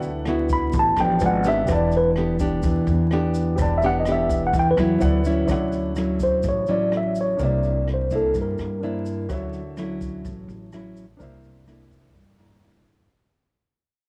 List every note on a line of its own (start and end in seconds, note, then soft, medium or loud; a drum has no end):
0.00 0.70 D2 medium
0.00 0.72 D3 medium
0.00 0.10 E4 soft
0.00 1.17 E4 medium
0.00 0.10 F#4 medium
0.00 1.18 B4 soft
0.00 1.19 D5 soft
0.00 1.20 F#5 medium
0.00 closed hi-hat soft
0.00 shaker soft
0.25 0.94 B3 medium
0.25 0.95 E4 medium
0.25 0.95 F#4 medium
0.25 cross-stick medium
0.25 closed hi-hat soft
0.49 0.74 B5 medium
0.49 kick medium
0.49 closed hi-hat soft
0.49 shaker medium
0.73 0.96 A1 medium
0.73 1.19 A2 medium
0.73 kick medium
0.73 closed hi-hat soft
0.73 shaker medium
0.79 0.99 A5 medium
0.96 1.19 A1 loud
0.96 1.42 F3 medium
0.96 1.42 B3 medium
0.96 1.42 D4 medium
0.96 cross-stick medium
0.96 closed hi-hat soft
0.96 shaker soft
1.00 1.22 G5 medium
1.20 1.65 G#1 loud
1.20 1.68 F4 medium
1.20 1.67 B4 soft
1.20 1.68 D5 soft
1.20 1.69 G#5 medium
1.20 closed hi-hat soft
1.20 shaker medium
1.26 1.47 F#5 medium
1.44 2.12 B3 medium
1.44 2.13 D4 medium
1.44 2.13 G4 medium
1.44 closed hi-hat soft
1.44 shaker medium
1.48 1.69 E5 loud
1.66 2.60 E1 medium
1.66 2.62 E3 medium
1.66 3.54 G4 medium
1.66 3.55 B4 medium
1.66 3.55 D5 soft
1.66 kick medium
1.66 cross-stick medium
1.66 closed hi-hat soft
1.66 shaker medium
1.72 1.94 D5 medium
1.72 3.56 A5 medium
1.92 closed hi-hat soft
1.92 shaker soft
1.97 2.10 B4 loud
2.16 2.37 B3 medium
2.16 2.37 D4 medium
2.16 2.37 G4 medium
2.16 cross-stick medium
2.16 closed hi-hat soft
2.39 3.07 B3 medium
2.39 3.07 D4 medium
2.39 3.08 G4 medium
2.39 kick medium
2.39 closed hi-hat soft
2.39 shaker medium
2.63 2.85 E2 medium
2.63 3.56 E3 medium
2.63 kick medium
2.63 closed hi-hat soft
2.63 shaker medium
2.87 3.54 E2 loud
2.87 closed hi-hat soft
2.87 shaker soft
3.11 3.79 B3 medium
3.11 3.79 D4 medium
3.11 3.79 G4 medium
3.11 cross-stick medium
3.11 closed hi-hat soft
3.34 closed hi-hat soft
3.34 shaker medium
3.56 4.50 E1 loud
3.56 4.97 G4 medium
3.56 4.98 B4 soft
3.56 4.99 D5 soft
3.56 kick medium
3.56 closed hi-hat soft
3.56 shaker medium
3.60 4.52 E3 medium
3.60 5.00 A5 medium
3.78 3.86 E5 medium
3.78 closed hi-hat soft
3.82 4.03 B3 medium
3.82 4.03 D4 medium
3.82 4.03 G4 medium
3.82 3.96 F#5 loud
3.82 shaker soft
4.00 4.08 D#5 medium
4.05 4.74 B3 medium
4.05 4.75 D4 medium
4.05 4.75 G4 medium
4.05 cross-stick medium
4.05 closed hi-hat soft
4.05 shaker medium
4.12 4.42 E5 medium
4.29 kick medium
4.29 closed hi-hat soft
4.29 shaker medium
4.47 4.56 F#5 medium
4.53 4.75 E2 medium
4.53 4.78 E3 medium
4.53 kick medium
4.53 closed hi-hat soft
4.53 shaker medium
4.59 4.68 G5 loud
4.71 4.76 B4 loud
4.77 4.99 E2 loud
4.77 5.22 F#3 medium
4.77 5.22 B3 medium
4.77 5.22 E4 medium
4.77 cross-stick medium
4.77 closed hi-hat soft
4.77 shaker soft
4.99 5.46 D2 loud
4.99 5.44 E4 medium
4.99 5.48 B4 medium
4.99 5.48 D5 medium
4.99 5.49 F#5 medium
4.99 closed hi-hat soft
4.99 shaker medium
5.25 5.93 F#3 medium
5.25 5.93 C#4 medium
5.25 5.93 E4 medium
5.25 closed hi-hat soft
5.25 shaker medium
5.46 6.40 D2 medium
5.46 6.41 D3 soft
5.46 7.35 D4 medium
5.46 7.33 E4 medium
5.46 7.34 C#5 medium
5.46 kick medium
5.46 cross-stick medium
5.46 closed hi-hat soft
5.46 shaker medium
5.51 7.36 F#5 medium
5.72 closed hi-hat soft
5.72 shaker soft
5.96 6.64 F#3 medium
5.96 6.64 C#4 soft
5.96 6.64 E4 medium
5.96 cross-stick medium
5.96 closed hi-hat soft
5.96 shaker medium
6.20 6.45 C5 medium
6.20 kick medium
6.20 closed hi-hat soft
6.20 shaker medium
6.43 6.66 A1 medium
6.43 7.37 A2 medium
6.43 kick medium
6.43 closed hi-hat soft
6.43 shaker medium
6.49 6.69 C#5 medium
6.67 7.35 A1 medium
6.67 7.35 F#3 medium
6.67 7.36 C#4 medium
6.67 7.36 E4 medium
6.67 closed hi-hat soft
6.67 shaker soft
6.71 6.92 D5 medium
6.92 cross-stick medium
6.92 closed hi-hat soft
6.97 7.17 E5 medium
7.15 closed hi-hat soft
7.15 shaker medium
7.21 7.41 C#5 medium
7.37 8.30 C2 medium
7.37 8.32 C3 medium
7.37 8.07 A#3 soft
7.37 8.78 D4 medium
7.37 8.07 D4 soft
7.37 8.79 A#4 soft
7.37 kick medium
7.37 closed hi-hat soft
7.37 shaker medium
7.41 8.07 E4 medium
7.41 8.80 C5 soft
7.41 7.86 D5 medium
7.41 8.81 E5 medium
7.63 closed hi-hat soft
7.63 shaker soft
7.88 cross-stick medium
7.88 closed hi-hat soft
7.94 8.13 C5 medium
8.10 8.78 A#3 medium
8.10 8.79 D4 medium
8.10 8.79 E4 medium
8.10 kick medium
8.10 closed hi-hat soft
8.10 shaker medium
8.15 8.36 A4 medium
8.34 8.57 G2 medium
8.34 9.28 G3 medium
8.34 kick medium
8.34 closed hi-hat soft
8.34 shaker medium
8.42 9.29 A#4 medium
8.58 9.26 G2 medium
8.58 cross-stick medium
8.58 closed hi-hat soft
8.58 shaker soft
8.80 9.26 A#3 medium
8.80 9.29 D4 soft
8.80 9.26 D4 medium
8.80 9.27 E4 medium
8.80 9.29 A#4 soft
8.80 9.29 C5 soft
8.80 9.30 E5 soft
8.80 closed hi-hat soft
9.06 closed hi-hat soft
9.06 shaker medium
9.29 10.21 D2 medium
9.29 10.23 D3 soft
9.29 9.61 F#3 medium
9.29 9.61 C#4 soft
9.29 9.61 E4 medium
9.29 11.16 F#4 medium
9.29 11.17 C#5 medium
9.29 11.18 E5 medium
9.29 kick medium
9.29 cross-stick medium
9.29 closed hi-hat soft
9.29 shaker medium
9.53 closed hi-hat soft
9.53 shaker soft
9.77 10.69 F#3 medium
9.77 10.69 C#4 soft
9.77 10.69 E4 medium
9.77 cross-stick medium
9.77 closed hi-hat soft
9.77 shaker medium
10.01 kick medium
10.01 closed hi-hat soft
10.01 shaker medium
10.24 10.47 A1 medium
10.24 11.17 A2 soft
10.24 kick medium
10.24 closed hi-hat soft
10.24 shaker medium
10.48 11.16 A1 medium
10.48 closed hi-hat soft
10.48 shaker soft
10.73 11.05 F#3 medium
10.73 11.05 C#4 medium
10.73 11.05 E4 medium
10.73 cross-stick medium
10.73 closed hi-hat soft
10.73 shaker medium
10.97 closed hi-hat soft
10.97 shaker medium
11.17 12.11 C2 medium
11.17 12.13 C3 soft
11.17 11.64 A#3 medium
11.17 13.05 D4 medium
11.17 11.64 D4 soft
11.17 13.06 A#4 medium
11.17 13.07 C5 medium
11.17 kick medium
11.17 closed hi-hat soft
11.17 shaker medium
11.21 11.64 E4 medium
11.21 13.08 E5 medium
11.44 closed hi-hat soft
11.44 shaker soft
11.67 12.35 A#3 medium
11.67 12.35 D4 medium
11.67 12.36 E4 medium
11.67 cross-stick medium
11.67 closed hi-hat soft
11.67 shaker medium
11.91 kick medium
11.91 closed hi-hat soft
11.91 shaker medium
12.15 12.37 G2 medium
12.15 13.08 G3 soft
12.15 kick medium
12.15 closed hi-hat soft
12.15 shaker medium
12.38 13.06 G2 medium
12.38 12.59 A#3 medium
12.38 12.59 D4 medium
12.38 12.59 E4 medium
12.38 12.61 A#5 medium
12.38 cross-stick medium
12.38 closed hi-hat soft
12.38 shaker soft
12.63 13.07 A#3 medium
12.63 13.07 D4 medium
12.63 13.07 E4 medium
12.63 13.07 D5 soft
12.63 closed hi-hat soft
12.63 shaker medium
12.86 closed hi-hat soft
12.86 shaker medium